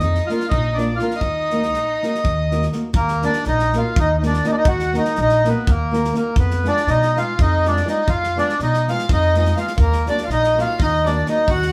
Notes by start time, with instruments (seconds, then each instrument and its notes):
0.00 upright bass F2, violin D#4, accordion D#5
0.15 snare
0.27 nylon-string guitar A#3 D4 F4 A#4, violin F4, accordion F5, snare
0.40 snare
0.49 upright bass A#1, violin D#4, accordion D#5, kick
0.74 nylon-string guitar A#3 D4, violin D4, accordion D5, snare
0.78 nylon-string guitar F4 A#4
0.96 nylon-string guitar A#3, violin F4, accordion F5, snare
1.02 nylon-string guitar D4 F4 A#4
1.11 snare
1.15 violin D#4, accordion D#5
1.21 upright bass D#2, kick
1.50 nylon-string guitar A#3 D#4 F#4, snare
1.54 nylon-string guitar A#4
1.63 snare
1.73 upright bass A#1, snare
2.03 nylon-string guitar A#3 D#4 F#4 A#4, snare
2.15 snare
2.24 upright bass D#2, kick
2.51 nylon-string guitar A#3 D#4 F#4 A#4, snare
2.62 snare
2.72 nylon-string guitar A#3 D#4 F#4 A#4, snare
2.93 upright bass D#2, accordion A#3, kick
3.08 snare
3.22 nylon-string guitar A#3 D#4 F#4 A#4, accordion D4, snare
3.33 snare
3.44 upright bass A#1, accordion D#4, snare
3.59 snare
3.73 nylon-string guitar A#3 D#4 F#4 A#4, snare
3.78 accordion F4
3.96 upright bass D#2, accordion D#4, kick
4.17 accordion D#4
4.22 nylon-string guitar A#3 D#4 F#4 A#4, snare
4.26 accordion D4
4.33 snare
4.44 nylon-string guitar A#3 D#4 F#4 A#4, accordion D#4, snare
4.52 accordion D4
4.58 accordion D#4
4.65 upright bass D#2, accordion F#4, kick
4.79 snare
4.93 nylon-string guitar A#3 D#4 F#4 A#4, snare
4.98 accordion D#4
5.05 snare
5.15 upright bass A#1, snare
5.21 accordion D#4
5.29 snare
5.45 nylon-string guitar A#3 D#4 F#4 A#4, accordion B3, snare
5.67 upright bass D#2, accordion A#3, kick
5.91 nylon-string guitar A#3 D#4 F#4 A#4, snare
6.04 snare
6.12 nylon-string guitar A#3 D#4 F#4 A#4, snare
6.17 accordion A#3
6.36 upright bass F2, accordion B3, kick
6.50 snare
6.64 nylon-string guitar G#3 B3 F4 G#4, snare
6.68 accordion D4
6.77 snare
6.87 upright bass B2, accordion D#4, snare
7.02 snare
7.16 nylon-string guitar G#3 B3 F4 G#4, accordion F4, snare
7.39 upright bass F2, accordion D#4, kick
7.65 nylon-string guitar G#3 B3 F4 G#4, accordion D4, snare
7.77 snare
7.85 nylon-string guitar G#3 B3 F4 G#4, snare
7.89 accordion D#4
8.07 upright bass F2, accordion F4, kick
8.23 snare
8.36 nylon-string guitar G#3 B3 F4 G#4, accordion D4, snare
8.49 snare
8.59 upright bass B2, accordion D#4, snare
8.74 snare
8.88 nylon-string guitar G#3 B3 F4 G#4, accordion F4, violin F5, snare
8.98 snare
9.09 upright bass F2, accordion D#4, violin D#5, kick
9.34 nylon-string guitar G#3 B3 F4 G#4, accordion D#4, snare
9.38 violin D#5
9.45 snare
9.56 nylon-string guitar G#3 B3 F4 G#4, accordion F4, violin F5, snare
9.67 snare
9.78 upright bass D#2, accordion A#3, violin A#4, kick
9.92 snare
10.06 nylon-string guitar F#3 A#3 D#4 F#4, accordion D4, violin D5, snare
10.18 snare
10.24 upright bass A#1, accordion F4, violin F5
10.30 accordion D#4, violin D#5, snare
10.44 snare
10.55 nylon-string guitar F#3 A#3 D#4 F#4, snare
10.60 accordion F4, violin F5
10.80 upright bass D#2, accordion D#4, violin D#5, kick
11.05 nylon-string guitar F#3 A#3 D#4 F#4, accordion D4, violin D5, snare
11.26 nylon-string guitar F#3 A#3 D#4 F#4, accordion D#4, snare
11.32 violin D#5
11.47 upright bass D#2, accordion F#4, violin F#5, kick
11.62 snare